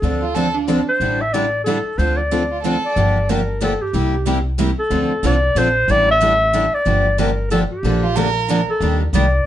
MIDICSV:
0, 0, Header, 1, 6, 480
1, 0, Start_track
1, 0, Key_signature, -1, "minor"
1, 0, Tempo, 325027
1, 44, Time_signature, 3, 2, 24, 8
1, 13975, End_track
2, 0, Start_track
2, 0, Title_t, "Clarinet"
2, 0, Program_c, 0, 71
2, 0, Note_on_c, 0, 69, 71
2, 770, Note_off_c, 0, 69, 0
2, 1314, Note_on_c, 0, 72, 83
2, 1790, Note_on_c, 0, 76, 92
2, 1812, Note_off_c, 0, 72, 0
2, 1967, Note_on_c, 0, 74, 89
2, 1990, Note_off_c, 0, 76, 0
2, 2414, Note_off_c, 0, 74, 0
2, 2423, Note_on_c, 0, 69, 81
2, 2929, Note_on_c, 0, 72, 84
2, 2951, Note_off_c, 0, 69, 0
2, 3205, Note_on_c, 0, 74, 75
2, 3227, Note_off_c, 0, 72, 0
2, 3886, Note_off_c, 0, 74, 0
2, 4209, Note_on_c, 0, 74, 79
2, 4874, Note_on_c, 0, 70, 78
2, 4896, Note_off_c, 0, 74, 0
2, 5345, Note_off_c, 0, 70, 0
2, 5365, Note_on_c, 0, 69, 77
2, 5642, Note_on_c, 0, 67, 70
2, 5664, Note_off_c, 0, 69, 0
2, 6592, Note_off_c, 0, 67, 0
2, 7076, Note_on_c, 0, 69, 95
2, 7775, Note_on_c, 0, 74, 96
2, 7797, Note_off_c, 0, 69, 0
2, 8239, Note_on_c, 0, 72, 98
2, 8261, Note_off_c, 0, 74, 0
2, 8726, Note_on_c, 0, 74, 111
2, 8748, Note_off_c, 0, 72, 0
2, 8997, Note_off_c, 0, 74, 0
2, 9026, Note_on_c, 0, 76, 110
2, 9955, Note_on_c, 0, 74, 92
2, 9977, Note_off_c, 0, 76, 0
2, 10619, Note_off_c, 0, 74, 0
2, 10630, Note_on_c, 0, 70, 77
2, 11067, Note_off_c, 0, 70, 0
2, 11098, Note_on_c, 0, 69, 90
2, 11226, Note_off_c, 0, 69, 0
2, 11392, Note_on_c, 0, 67, 70
2, 12285, Note_off_c, 0, 67, 0
2, 12849, Note_on_c, 0, 69, 80
2, 13280, Note_off_c, 0, 69, 0
2, 13510, Note_on_c, 0, 74, 84
2, 13975, Note_off_c, 0, 74, 0
2, 13975, End_track
3, 0, Start_track
3, 0, Title_t, "Violin"
3, 0, Program_c, 1, 40
3, 322, Note_on_c, 1, 65, 74
3, 511, Note_on_c, 1, 69, 86
3, 533, Note_off_c, 1, 65, 0
3, 794, Note_on_c, 1, 62, 74
3, 816, Note_off_c, 1, 69, 0
3, 1142, Note_off_c, 1, 62, 0
3, 3710, Note_on_c, 1, 65, 66
3, 3879, Note_off_c, 1, 65, 0
3, 3888, Note_on_c, 1, 69, 88
3, 4338, Note_off_c, 1, 69, 0
3, 11853, Note_on_c, 1, 65, 88
3, 12046, Note_on_c, 1, 70, 104
3, 12068, Note_off_c, 1, 65, 0
3, 12671, Note_off_c, 1, 70, 0
3, 13975, End_track
4, 0, Start_track
4, 0, Title_t, "Steel-string acoustic guitar"
4, 0, Program_c, 2, 25
4, 2945, Note_on_c, 2, 57, 60
4, 2951, Note_on_c, 2, 65, 69
4, 3236, Note_off_c, 2, 57, 0
4, 3239, Note_off_c, 2, 65, 0
4, 3415, Note_on_c, 2, 57, 77
4, 3423, Note_on_c, 2, 65, 84
4, 3574, Note_off_c, 2, 57, 0
4, 3578, Note_off_c, 2, 65, 0
4, 3902, Note_on_c, 2, 57, 76
4, 3903, Note_on_c, 2, 65, 74
4, 4057, Note_off_c, 2, 57, 0
4, 4058, Note_off_c, 2, 65, 0
4, 7246, Note_on_c, 2, 57, 64
4, 7254, Note_on_c, 2, 65, 73
4, 7546, Note_off_c, 2, 57, 0
4, 7550, Note_off_c, 2, 65, 0
4, 7730, Note_on_c, 2, 57, 89
4, 7741, Note_on_c, 2, 65, 108
4, 7891, Note_off_c, 2, 57, 0
4, 7896, Note_off_c, 2, 65, 0
4, 8212, Note_on_c, 2, 57, 81
4, 8226, Note_on_c, 2, 65, 97
4, 8372, Note_off_c, 2, 57, 0
4, 8379, Note_off_c, 2, 65, 0
4, 13975, End_track
5, 0, Start_track
5, 0, Title_t, "Steel-string acoustic guitar"
5, 0, Program_c, 3, 25
5, 44, Note_on_c, 3, 53, 55
5, 45, Note_on_c, 3, 50, 53
5, 49, Note_on_c, 3, 60, 53
5, 57, Note_on_c, 3, 62, 65
5, 57, Note_on_c, 3, 69, 61
5, 341, Note_off_c, 3, 53, 0
5, 342, Note_off_c, 3, 50, 0
5, 344, Note_off_c, 3, 60, 0
5, 348, Note_off_c, 3, 62, 0
5, 348, Note_off_c, 3, 69, 0
5, 514, Note_on_c, 3, 50, 66
5, 523, Note_on_c, 3, 53, 64
5, 528, Note_on_c, 3, 62, 74
5, 529, Note_on_c, 3, 60, 67
5, 534, Note_on_c, 3, 69, 77
5, 680, Note_off_c, 3, 50, 0
5, 684, Note_off_c, 3, 53, 0
5, 687, Note_off_c, 3, 60, 0
5, 687, Note_off_c, 3, 62, 0
5, 690, Note_off_c, 3, 69, 0
5, 997, Note_on_c, 3, 50, 74
5, 1002, Note_on_c, 3, 53, 83
5, 1003, Note_on_c, 3, 60, 86
5, 1008, Note_on_c, 3, 69, 88
5, 1013, Note_on_c, 3, 62, 83
5, 1162, Note_off_c, 3, 50, 0
5, 1164, Note_off_c, 3, 53, 0
5, 1165, Note_off_c, 3, 60, 0
5, 1167, Note_off_c, 3, 69, 0
5, 1170, Note_off_c, 3, 62, 0
5, 1483, Note_on_c, 3, 50, 52
5, 1487, Note_on_c, 3, 55, 55
5, 1498, Note_on_c, 3, 62, 52
5, 1500, Note_on_c, 3, 64, 57
5, 1504, Note_on_c, 3, 69, 65
5, 1783, Note_off_c, 3, 50, 0
5, 1785, Note_off_c, 3, 55, 0
5, 1791, Note_off_c, 3, 62, 0
5, 1792, Note_off_c, 3, 64, 0
5, 1794, Note_off_c, 3, 69, 0
5, 1974, Note_on_c, 3, 55, 78
5, 1976, Note_on_c, 3, 50, 74
5, 1980, Note_on_c, 3, 64, 86
5, 1981, Note_on_c, 3, 62, 81
5, 1987, Note_on_c, 3, 69, 68
5, 2132, Note_off_c, 3, 55, 0
5, 2133, Note_off_c, 3, 50, 0
5, 2135, Note_off_c, 3, 62, 0
5, 2135, Note_off_c, 3, 64, 0
5, 2138, Note_off_c, 3, 69, 0
5, 2452, Note_on_c, 3, 50, 84
5, 2457, Note_on_c, 3, 55, 80
5, 2460, Note_on_c, 3, 64, 87
5, 2464, Note_on_c, 3, 62, 74
5, 2469, Note_on_c, 3, 69, 93
5, 2611, Note_off_c, 3, 50, 0
5, 2614, Note_off_c, 3, 55, 0
5, 2615, Note_off_c, 3, 64, 0
5, 2617, Note_off_c, 3, 62, 0
5, 2620, Note_off_c, 3, 69, 0
5, 2937, Note_on_c, 3, 50, 58
5, 2941, Note_on_c, 3, 53, 56
5, 2943, Note_on_c, 3, 60, 60
5, 2947, Note_on_c, 3, 62, 60
5, 2949, Note_on_c, 3, 69, 59
5, 3232, Note_off_c, 3, 50, 0
5, 3234, Note_off_c, 3, 53, 0
5, 3235, Note_off_c, 3, 60, 0
5, 3237, Note_off_c, 3, 62, 0
5, 3238, Note_off_c, 3, 69, 0
5, 3421, Note_on_c, 3, 50, 55
5, 3421, Note_on_c, 3, 53, 72
5, 3425, Note_on_c, 3, 60, 73
5, 3426, Note_on_c, 3, 62, 64
5, 3435, Note_on_c, 3, 69, 69
5, 3577, Note_off_c, 3, 50, 0
5, 3577, Note_off_c, 3, 53, 0
5, 3578, Note_off_c, 3, 60, 0
5, 3579, Note_off_c, 3, 62, 0
5, 3584, Note_off_c, 3, 69, 0
5, 3908, Note_on_c, 3, 50, 73
5, 3914, Note_on_c, 3, 53, 78
5, 3917, Note_on_c, 3, 60, 77
5, 3919, Note_on_c, 3, 69, 85
5, 3923, Note_on_c, 3, 62, 79
5, 4060, Note_off_c, 3, 50, 0
5, 4063, Note_off_c, 3, 53, 0
5, 4065, Note_off_c, 3, 60, 0
5, 4066, Note_off_c, 3, 69, 0
5, 4068, Note_off_c, 3, 62, 0
5, 4380, Note_on_c, 3, 50, 61
5, 4394, Note_on_c, 3, 62, 69
5, 4395, Note_on_c, 3, 53, 63
5, 4397, Note_on_c, 3, 58, 56
5, 4398, Note_on_c, 3, 67, 65
5, 4674, Note_off_c, 3, 50, 0
5, 4681, Note_off_c, 3, 53, 0
5, 4681, Note_off_c, 3, 62, 0
5, 4683, Note_off_c, 3, 58, 0
5, 4683, Note_off_c, 3, 67, 0
5, 4859, Note_on_c, 3, 50, 68
5, 4867, Note_on_c, 3, 53, 69
5, 4875, Note_on_c, 3, 58, 82
5, 4877, Note_on_c, 3, 62, 81
5, 4882, Note_on_c, 3, 67, 82
5, 5016, Note_off_c, 3, 50, 0
5, 5020, Note_off_c, 3, 53, 0
5, 5024, Note_off_c, 3, 58, 0
5, 5025, Note_off_c, 3, 62, 0
5, 5028, Note_off_c, 3, 67, 0
5, 5336, Note_on_c, 3, 50, 80
5, 5342, Note_on_c, 3, 53, 85
5, 5342, Note_on_c, 3, 58, 86
5, 5345, Note_on_c, 3, 62, 87
5, 5349, Note_on_c, 3, 67, 96
5, 5495, Note_off_c, 3, 50, 0
5, 5498, Note_off_c, 3, 53, 0
5, 5498, Note_off_c, 3, 58, 0
5, 5499, Note_off_c, 3, 62, 0
5, 5501, Note_off_c, 3, 67, 0
5, 5818, Note_on_c, 3, 48, 60
5, 5819, Note_on_c, 3, 55, 56
5, 5823, Note_on_c, 3, 58, 65
5, 5823, Note_on_c, 3, 64, 73
5, 5828, Note_on_c, 3, 67, 63
5, 6113, Note_off_c, 3, 48, 0
5, 6113, Note_off_c, 3, 55, 0
5, 6115, Note_off_c, 3, 58, 0
5, 6115, Note_off_c, 3, 64, 0
5, 6118, Note_off_c, 3, 67, 0
5, 6300, Note_on_c, 3, 58, 75
5, 6302, Note_on_c, 3, 48, 76
5, 6305, Note_on_c, 3, 55, 85
5, 6308, Note_on_c, 3, 64, 83
5, 6314, Note_on_c, 3, 67, 95
5, 6457, Note_off_c, 3, 48, 0
5, 6457, Note_off_c, 3, 58, 0
5, 6459, Note_off_c, 3, 55, 0
5, 6461, Note_off_c, 3, 64, 0
5, 6463, Note_off_c, 3, 67, 0
5, 6764, Note_on_c, 3, 48, 84
5, 6773, Note_on_c, 3, 55, 81
5, 6773, Note_on_c, 3, 58, 92
5, 6778, Note_on_c, 3, 67, 94
5, 6779, Note_on_c, 3, 64, 100
5, 6929, Note_off_c, 3, 48, 0
5, 6933, Note_off_c, 3, 55, 0
5, 6933, Note_off_c, 3, 58, 0
5, 6936, Note_off_c, 3, 64, 0
5, 6936, Note_off_c, 3, 67, 0
5, 7245, Note_on_c, 3, 50, 70
5, 7250, Note_on_c, 3, 60, 65
5, 7254, Note_on_c, 3, 53, 69
5, 7256, Note_on_c, 3, 62, 59
5, 7264, Note_on_c, 3, 69, 75
5, 7546, Note_off_c, 3, 50, 0
5, 7548, Note_off_c, 3, 60, 0
5, 7550, Note_off_c, 3, 53, 0
5, 7551, Note_off_c, 3, 62, 0
5, 7555, Note_off_c, 3, 69, 0
5, 7739, Note_on_c, 3, 50, 88
5, 7743, Note_on_c, 3, 53, 87
5, 7745, Note_on_c, 3, 60, 85
5, 7746, Note_on_c, 3, 69, 91
5, 7754, Note_on_c, 3, 62, 87
5, 7895, Note_off_c, 3, 50, 0
5, 7898, Note_off_c, 3, 53, 0
5, 7899, Note_off_c, 3, 60, 0
5, 7899, Note_off_c, 3, 69, 0
5, 7903, Note_off_c, 3, 62, 0
5, 8215, Note_on_c, 3, 50, 86
5, 8215, Note_on_c, 3, 53, 90
5, 8217, Note_on_c, 3, 62, 92
5, 8223, Note_on_c, 3, 69, 101
5, 8225, Note_on_c, 3, 60, 81
5, 8373, Note_off_c, 3, 50, 0
5, 8373, Note_off_c, 3, 53, 0
5, 8374, Note_off_c, 3, 62, 0
5, 8377, Note_off_c, 3, 69, 0
5, 8378, Note_off_c, 3, 60, 0
5, 8704, Note_on_c, 3, 50, 59
5, 8705, Note_on_c, 3, 55, 64
5, 8706, Note_on_c, 3, 62, 59
5, 8709, Note_on_c, 3, 69, 64
5, 8710, Note_on_c, 3, 64, 64
5, 8995, Note_off_c, 3, 50, 0
5, 8995, Note_off_c, 3, 55, 0
5, 8996, Note_off_c, 3, 62, 0
5, 8997, Note_off_c, 3, 69, 0
5, 8998, Note_off_c, 3, 64, 0
5, 9162, Note_on_c, 3, 50, 70
5, 9173, Note_on_c, 3, 55, 74
5, 9178, Note_on_c, 3, 62, 85
5, 9179, Note_on_c, 3, 64, 75
5, 9187, Note_on_c, 3, 69, 80
5, 9326, Note_off_c, 3, 50, 0
5, 9332, Note_off_c, 3, 55, 0
5, 9334, Note_off_c, 3, 62, 0
5, 9335, Note_off_c, 3, 64, 0
5, 9339, Note_off_c, 3, 69, 0
5, 9649, Note_on_c, 3, 50, 78
5, 9651, Note_on_c, 3, 55, 85
5, 9652, Note_on_c, 3, 62, 81
5, 9661, Note_on_c, 3, 64, 90
5, 9663, Note_on_c, 3, 69, 95
5, 9809, Note_off_c, 3, 50, 0
5, 9811, Note_off_c, 3, 55, 0
5, 9811, Note_off_c, 3, 62, 0
5, 9815, Note_off_c, 3, 64, 0
5, 9817, Note_off_c, 3, 69, 0
5, 10133, Note_on_c, 3, 50, 63
5, 10133, Note_on_c, 3, 53, 58
5, 10138, Note_on_c, 3, 58, 61
5, 10140, Note_on_c, 3, 62, 64
5, 10143, Note_on_c, 3, 67, 65
5, 10428, Note_off_c, 3, 50, 0
5, 10428, Note_off_c, 3, 53, 0
5, 10430, Note_off_c, 3, 58, 0
5, 10432, Note_off_c, 3, 62, 0
5, 10433, Note_off_c, 3, 67, 0
5, 10606, Note_on_c, 3, 50, 72
5, 10610, Note_on_c, 3, 53, 85
5, 10616, Note_on_c, 3, 58, 89
5, 10619, Note_on_c, 3, 62, 80
5, 10620, Note_on_c, 3, 67, 93
5, 10767, Note_off_c, 3, 50, 0
5, 10769, Note_off_c, 3, 53, 0
5, 10773, Note_off_c, 3, 58, 0
5, 10774, Note_off_c, 3, 62, 0
5, 10774, Note_off_c, 3, 67, 0
5, 11094, Note_on_c, 3, 50, 85
5, 11099, Note_on_c, 3, 58, 84
5, 11101, Note_on_c, 3, 53, 94
5, 11105, Note_on_c, 3, 67, 88
5, 11108, Note_on_c, 3, 62, 92
5, 11251, Note_off_c, 3, 50, 0
5, 11254, Note_off_c, 3, 53, 0
5, 11254, Note_off_c, 3, 58, 0
5, 11256, Note_off_c, 3, 67, 0
5, 11258, Note_off_c, 3, 62, 0
5, 11583, Note_on_c, 3, 50, 59
5, 11586, Note_on_c, 3, 53, 63
5, 11592, Note_on_c, 3, 58, 68
5, 11592, Note_on_c, 3, 69, 64
5, 11594, Note_on_c, 3, 62, 73
5, 11872, Note_off_c, 3, 50, 0
5, 11874, Note_off_c, 3, 53, 0
5, 11877, Note_off_c, 3, 58, 0
5, 11877, Note_off_c, 3, 69, 0
5, 11878, Note_off_c, 3, 62, 0
5, 12062, Note_on_c, 3, 53, 87
5, 12065, Note_on_c, 3, 50, 78
5, 12072, Note_on_c, 3, 58, 81
5, 12072, Note_on_c, 3, 62, 83
5, 12077, Note_on_c, 3, 69, 78
5, 12215, Note_off_c, 3, 53, 0
5, 12216, Note_off_c, 3, 50, 0
5, 12219, Note_off_c, 3, 62, 0
5, 12220, Note_off_c, 3, 58, 0
5, 12222, Note_off_c, 3, 69, 0
5, 12548, Note_on_c, 3, 53, 95
5, 12550, Note_on_c, 3, 50, 90
5, 12556, Note_on_c, 3, 62, 105
5, 12559, Note_on_c, 3, 58, 86
5, 12559, Note_on_c, 3, 69, 97
5, 12697, Note_off_c, 3, 53, 0
5, 12698, Note_off_c, 3, 50, 0
5, 12701, Note_off_c, 3, 62, 0
5, 12703, Note_off_c, 3, 58, 0
5, 12703, Note_off_c, 3, 69, 0
5, 13016, Note_on_c, 3, 51, 57
5, 13021, Note_on_c, 3, 55, 66
5, 13024, Note_on_c, 3, 58, 64
5, 13030, Note_on_c, 3, 62, 81
5, 13031, Note_on_c, 3, 67, 72
5, 13308, Note_off_c, 3, 51, 0
5, 13310, Note_off_c, 3, 55, 0
5, 13312, Note_off_c, 3, 58, 0
5, 13315, Note_off_c, 3, 62, 0
5, 13315, Note_off_c, 3, 67, 0
5, 13508, Note_on_c, 3, 51, 81
5, 13512, Note_on_c, 3, 58, 85
5, 13514, Note_on_c, 3, 55, 89
5, 13517, Note_on_c, 3, 67, 94
5, 13518, Note_on_c, 3, 62, 80
5, 13656, Note_off_c, 3, 51, 0
5, 13659, Note_off_c, 3, 58, 0
5, 13660, Note_off_c, 3, 55, 0
5, 13661, Note_off_c, 3, 62, 0
5, 13661, Note_off_c, 3, 67, 0
5, 13975, End_track
6, 0, Start_track
6, 0, Title_t, "Upright bass"
6, 0, Program_c, 4, 32
6, 31, Note_on_c, 4, 38, 84
6, 1192, Note_off_c, 4, 38, 0
6, 1477, Note_on_c, 4, 33, 75
6, 2637, Note_off_c, 4, 33, 0
6, 2924, Note_on_c, 4, 38, 80
6, 4081, Note_off_c, 4, 38, 0
6, 4374, Note_on_c, 4, 31, 91
6, 5527, Note_off_c, 4, 31, 0
6, 5808, Note_on_c, 4, 36, 78
6, 6963, Note_off_c, 4, 36, 0
6, 7244, Note_on_c, 4, 38, 92
6, 7632, Note_off_c, 4, 38, 0
6, 7724, Note_on_c, 4, 36, 78
6, 8136, Note_off_c, 4, 36, 0
6, 8198, Note_on_c, 4, 34, 76
6, 8613, Note_off_c, 4, 34, 0
6, 8682, Note_on_c, 4, 33, 87
6, 9837, Note_off_c, 4, 33, 0
6, 10129, Note_on_c, 4, 31, 91
6, 11281, Note_off_c, 4, 31, 0
6, 11563, Note_on_c, 4, 34, 86
6, 12716, Note_off_c, 4, 34, 0
6, 13002, Note_on_c, 4, 39, 96
6, 13388, Note_off_c, 4, 39, 0
6, 13481, Note_on_c, 4, 36, 87
6, 13891, Note_off_c, 4, 36, 0
6, 13975, End_track
0, 0, End_of_file